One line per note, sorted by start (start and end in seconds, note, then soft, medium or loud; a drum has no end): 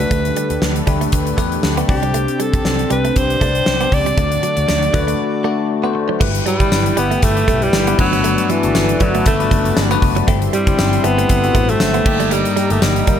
0.00 0.11 D3 medium
0.00 0.10 A3 medium
0.00 0.11 D4 medium
0.00 6.17 D4 medium
0.00 0.13 F#4 medium
0.00 0.12 A4 medium
0.00 0.63 B4 medium
0.00 0.13 D5 medium
0.00 closed hi-hat soft
0.10 0.29 D2 medium
0.10 0.83 D3 medium
0.10 1.87 D3 medium
0.10 0.60 A3 medium
0.10 0.21 A3 medium
0.10 0.60 D4 medium
0.10 4.14 G4 medium
0.10 0.60 G4 medium
0.10 1.87 A4 medium
0.10 1.87 B4 medium
0.10 0.60 B4 medium
0.10 kick loud
0.10 closed hi-hat medium
0.25 closed hi-hat medium
0.36 0.46 G3 medium
0.36 closed hi-hat medium
0.50 0.58 D2 medium
0.50 muted clean electric guitar stroke soft
0.50 closed hi-hat medium
0.61 0.80 D2 loud
0.61 muted clean electric guitar stroke soft
0.61 snare medium
0.76 closed hi-hat medium
0.86 1.05 D2 loud
0.86 0.97 G3 medium
0.86 1.20 A3 medium
0.86 1.20 D4 medium
0.86 1.21 G4 medium
0.86 1.21 B4 medium
0.86 kick medium
0.86 closed hi-hat medium
1.01 1.09 A3 medium
1.01 closed hi-hat soft
1.12 1.31 D2 loud
1.12 kick medium
1.12 closed hi-hat medium
1.27 closed hi-hat soft
1.37 1.56 E2 medium
1.37 1.62 A3 medium
1.37 1.48 A3 medium
1.37 1.62 D4 medium
1.37 1.63 G4 medium
1.37 1.63 B4 loud
1.37 kick medium
1.37 closed hi-hat medium
1.52 closed hi-hat soft
1.63 1.82 D2 medium
1.63 snare loud
1.77 1.88 A3 medium
1.77 1.85 B3 medium
1.77 1.87 D4 medium
1.77 1.88 G4 medium
1.77 1.88 D5 medium
1.77 closed hi-hat medium
1.88 2.25 C2 loud
1.88 2.61 C3 medium
1.88 2.70 C4 medium
1.88 4.15 C4 medium
1.88 2.71 D4 medium
1.88 2.71 G4 medium
1.88 2.43 G4 medium
1.88 2.71 D5 medium
1.88 muted clean electric guitar stroke soft
1.88 kick loud
1.88 open hi-hat medium
2.03 2.11 G3 medium
2.03 closed hi-hat soft
2.14 2.24 A3 medium
2.14 closed hi-hat medium
2.28 closed hi-hat medium
2.40 2.49 G3 medium
2.40 2.91 A4 loud
2.40 closed hi-hat medium
2.53 2.62 C2 medium
2.53 muted clean electric guitar stroke soft
2.53 kick loud
2.53 closed hi-hat medium
2.65 2.83 C2 loud
2.65 muted clean electric guitar stroke soft
2.65 snare loud
2.79 closed hi-hat soft
2.90 3.09 C2 loud
2.90 3.00 G3 medium
2.90 3.24 C4 medium
2.90 3.24 D4 medium
2.90 3.24 G4 medium
2.90 3.24 B4 medium
2.90 3.19 B4 medium
2.90 closed hi-hat medium
3.05 3.12 A3 medium
3.05 closed hi-hat soft
3.16 3.34 C2 loud
3.16 3.96 C5 loud
3.16 kick loud
3.16 closed hi-hat medium
3.30 closed hi-hat soft
3.41 3.60 C2 medium
3.41 3.51 A3 medium
3.41 3.66 C4 medium
3.41 3.66 D4 medium
3.41 3.66 G4 medium
3.41 3.66 D5 medium
3.41 kick medium
3.41 closed hi-hat medium
3.55 closed hi-hat soft
3.66 3.85 C2 loud
3.66 snare loud
3.80 3.89 B3 medium
3.80 4.05 C4 medium
3.80 4.05 D4 medium
3.80 4.05 G4 medium
3.80 4.05 D5 medium
3.80 closed hi-hat soft
3.92 4.10 C#2 medium
3.92 5.71 D5 loud
3.92 muted clean electric guitar stroke soft
3.92 kick medium
3.92 open hi-hat medium
4.06 4.14 G3 medium
4.06 closed hi-hat soft
4.17 4.36 D2 loud
4.17 4.90 D3 medium
4.17 4.66 A3 medium
4.17 6.19 A3 medium
4.17 4.27 A3 medium
4.17 4.67 D4 medium
4.17 6.19 F#4 medium
4.17 4.67 F#4 medium
4.17 4.67 D5 medium
4.17 kick loud
4.17 closed hi-hat medium
4.32 closed hi-hat medium
4.43 4.53 F#3 medium
4.43 closed hi-hat medium
4.57 4.65 D2 loud
4.57 muted clean electric guitar stroke soft
4.57 closed hi-hat medium
4.68 4.87 D2 loud
4.68 muted clean electric guitar stroke soft
4.68 snare medium
4.68 tambourine medium
4.83 closed hi-hat soft
4.93 5.12 D2 loud
4.93 5.03 F#3 medium
4.93 5.27 A3 medium
4.93 5.27 D4 medium
4.93 5.27 F#4 medium
4.93 5.28 B4 loud
4.93 kick loud
4.93 closed hi-hat medium
5.07 5.15 A3 medium
5.07 closed hi-hat soft
5.44 5.69 A3 medium
5.44 5.54 A3 medium
5.44 5.69 D4 medium
5.44 5.69 F#4 medium
5.44 5.69 D5 loud
5.83 6.08 A3 medium
5.83 5.92 B3 medium
5.83 6.08 D4 medium
5.83 6.08 F#4 medium
5.83 6.09 C5 medium
5.95 muted clean electric guitar stroke soft
6.09 6.17 F#3 medium
6.20 6.39 G1 loud
6.20 6.93 G2 medium
6.20 6.30 A3 medium
6.20 6.45 E4 medium
6.20 7.97 E4 medium
6.20 7.97 G4 medium
6.20 6.45 G4 medium
6.20 10.24 B4 medium
6.20 6.46 B4 loud
6.20 7.97 G5 medium
6.20 kick loud
6.20 crash medium
6.35 closed hi-hat medium
6.46 6.56 G3 medium
6.46 6.94 G3 loud
6.46 closed hi-hat medium
6.60 6.68 G1 loud
6.60 6.84 E4 medium
6.60 6.85 G4 medium
6.60 6.85 B4 medium
6.60 muted clean electric guitar stroke soft
6.60 kick loud
6.60 closed hi-hat medium
6.72 6.90 G1 loud
6.72 muted clean electric guitar stroke soft
6.72 snare loud
6.72 tambourine medium
6.86 closed hi-hat medium
6.97 7.15 G1 loud
6.97 7.07 G3 medium
6.97 7.25 B3 loud
6.97 7.22 E4 medium
6.97 7.22 G4 medium
6.97 7.22 B4 medium
6.97 closed hi-hat medium
7.11 7.19 A3 medium
7.11 closed hi-hat medium
7.22 7.41 G1 loud
7.22 7.65 A3 loud
7.22 kick loud
7.22 closed hi-hat loud
7.36 7.68 E4 medium
7.36 7.68 G4 medium
7.36 7.69 B4 medium
7.36 closed hi-hat soft
7.48 7.66 B1 medium
7.48 7.58 A3 medium
7.48 kick medium
7.48 closed hi-hat medium
7.62 7.99 G3 loud
7.62 closed hi-hat soft
7.73 7.92 G1 loud
7.73 snare loud
7.73 tambourine medium
7.87 7.95 B3 medium
7.87 7.99 E4 medium
7.87 7.99 G4 medium
7.87 7.98 B4 medium
7.87 closed hi-hat medium
7.98 8.35 G1 medium
7.98 8.71 G2 medium
7.98 8.52 F#3 loud
7.98 8.49 A3 medium
7.98 8.50 B3 medium
7.98 8.50 D4 medium
7.98 10.25 F#4 medium
7.98 8.50 F#4 medium
7.98 8.50 B4 medium
7.98 10.26 D5 medium
7.98 10.25 A5 medium
7.98 muted clean electric guitar stroke soft
7.98 kick loud
7.98 crash medium
8.13 8.21 F#3 medium
8.13 closed hi-hat soft
8.24 8.34 A3 medium
8.24 closed hi-hat medium
8.38 closed hi-hat medium
8.50 9.04 E3 loud
8.50 8.59 F#3 medium
8.50 closed hi-hat medium
8.63 8.72 G1 medium
8.63 8.88 A3 medium
8.63 8.88 B3 medium
8.63 8.88 D4 medium
8.63 8.88 F#4 medium
8.63 8.88 D5 medium
8.63 muted clean electric guitar stroke soft
8.63 closed hi-hat medium
8.75 8.94 G1 loud
8.75 muted clean electric guitar stroke soft
8.75 snare medium
8.75 tambourine medium
8.89 closed hi-hat medium
9.00 9.19 G1 loud
9.00 9.10 F#3 medium
9.00 9.27 F#3 medium
9.00 9.25 A3 medium
9.00 9.25 B3 medium
9.00 9.25 D4 medium
9.00 9.25 F#4 medium
9.00 9.25 B4 medium
9.00 kick loud
9.00 closed hi-hat medium
9.15 9.23 A3 medium
9.15 closed hi-hat soft
9.26 9.44 G1 loud
9.26 9.99 A3 loud
9.26 kick loud
9.26 closed hi-hat loud
9.39 9.72 A3 medium
9.39 9.72 B3 medium
9.39 9.72 D4 medium
9.39 9.72 F#4 medium
9.39 9.72 B4 medium
9.39 closed hi-hat soft
9.51 9.70 F#1 loud
9.51 9.61 A3 medium
9.51 kick medium
9.51 closed hi-hat medium
9.65 closed hi-hat soft
9.77 9.95 G1 loud
9.77 snare loud
9.77 tambourine medium
9.90 10.15 A3 medium
9.90 10.15 B3 medium
9.90 9.99 B3 medium
9.90 10.15 D4 medium
9.90 10.15 F#4 medium
9.90 10.16 B4 loud
9.90 closed hi-hat medium
10.02 10.21 F#1 medium
10.02 muted clean electric guitar stroke soft
10.02 kick medium
10.02 open hi-hat medium
10.16 10.24 F#3 medium
10.16 closed hi-hat medium
10.27 10.46 G1 loud
10.27 11.00 G2 medium
10.27 12.04 G3 medium
10.27 10.37 A3 loud
10.27 10.52 C4 medium
10.27 10.52 E4 medium
10.27 10.53 G4 loud
10.27 12.04 E5 medium
10.27 12.04 C6 medium
10.27 kick loud
10.27 closed hi-hat medium
10.42 closed hi-hat medium
10.53 10.63 G3 medium
10.53 11.07 G3 loud
10.53 closed hi-hat medium
10.67 10.75 G1 loud
10.67 10.91 C4 medium
10.67 10.92 E4 medium
10.67 10.92 G4 medium
10.67 muted clean electric guitar stroke soft
10.67 kick loud
10.67 closed hi-hat medium
10.79 10.97 G1 loud
10.79 muted clean electric guitar stroke soft
10.79 snare loud
10.79 tambourine medium
10.93 closed hi-hat medium
11.04 11.22 G1 medium
11.04 11.14 G3 medium
11.04 11.72 B3 loud
11.04 11.28 C4 medium
11.04 11.29 E4 medium
11.04 11.29 A4 medium
11.04 closed hi-hat medium
11.18 11.26 A3 medium
11.18 closed hi-hat medium
11.29 11.48 G1 loud
11.29 kick loud
11.29 closed hi-hat loud
11.43 11.75 C4 medium
11.43 11.76 E4 medium
11.43 11.76 F#4 medium
11.43 closed hi-hat soft
11.55 11.73 A1 medium
11.55 11.65 A3 medium
11.55 kick loud
11.55 closed hi-hat medium
11.69 12.34 A3 loud
11.69 closed hi-hat soft
11.80 11.99 G1 loud
11.80 snare loud
11.80 tambourine medium
11.94 12.02 B3 medium
11.94 12.05 C4 medium
11.94 12.06 E4 medium
11.94 12.05 G4 medium
11.94 closed hi-hat medium
12.05 12.42 G1 loud
12.05 12.78 G2 medium
12.05 12.56 A#3 medium
12.05 12.57 D#4 medium
12.05 13.20 G4 medium
12.05 12.57 G4 medium
12.05 13.20 A#4 medium
12.05 13.20 D#5 medium
12.05 13.20 A#5 medium
12.05 muted clean electric guitar stroke soft
12.05 kick loud
12.05 crash medium
12.20 12.28 G3 medium
12.20 closed hi-hat medium
12.31 12.73 G3 loud
12.31 12.41 A3 medium
12.31 closed hi-hat medium
12.45 closed hi-hat medium
12.56 12.66 G3 medium
12.56 closed hi-hat medium
12.70 12.79 G1 loud
12.70 12.84 A3 loud
12.70 12.95 A#3 medium
12.70 12.95 D#4 medium
12.70 12.95 G4 medium
12.70 muted clean electric guitar stroke soft
12.70 closed hi-hat medium
12.82 13.00 G1 medium
12.82 13.20 G3 medium
12.82 muted clean electric guitar stroke soft
12.82 snare loud
12.82 tambourine medium
12.96 closed hi-hat medium
13.07 13.20 G1 loud
13.07 13.17 G3 medium
13.07 13.20 A#3 medium
13.07 13.20 D#4 medium
13.07 13.20 A#4 medium
13.07 kick loud
13.07 closed hi-hat medium